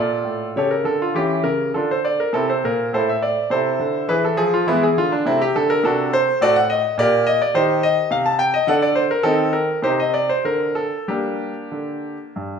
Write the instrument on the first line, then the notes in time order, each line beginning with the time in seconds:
grand piano
Already playing: A#2 F4 A4 D5
0.25 A2
0.56 C#3 G4 A4 C#5
0.71 A#4
0.84 D3 A4
1.02 F4
1.14 E3 C#4 E4 G4
1.43 C#3 A#4
1.74 D3 D4 F4 A4
1.91 C5
2.05 D5
2.20 A#4
2.33 C3 C4 E4 A4
2.50 C5
2.64 A#2 A#4
2.93 A2 E4 A4 C5
3.09 E5
3.22 D5
3.50 C3 E4 A4 C5
3.79 D3
4.08 E3 E4 G#4 B4
4.25 A4
4.37 F3 G#4
4.54 F4
4.67 E3 G#3 B3 E4
4.83 G#4
4.97 D3 F4
5.12 D4
5.26 C3 A3 C4 E4
5.42 G4
5.55 D3 A4
5.70 A#4
5.84 C3 D4 F#4 A4
6.13 C5
6.41 A2 F#4 A4 D5
6.56 F#5
6.70 D#5
6.98 A#2 G4 A#4 D5
7.27 D#5
7.42 D5
7.54 D#3 D#4 G4 C5
7.83 D#5
8.11 C3 F5
8.26 A5
8.39 G5
8.54 D#5
8.67 D3 A4 D5 F#5
8.82 D5
8.95 C5
9.11 A#4
9.23 D#3 C4 D#4 A4
9.53 A#4
9.82 C3 D#4 G4 C5
10.00 D#5
10.14 D5
10.29 C5
10.45 D3 A#4
10.75 A4
11.08 G3 A#3 D4 G4
11.72 D3
12.36 G2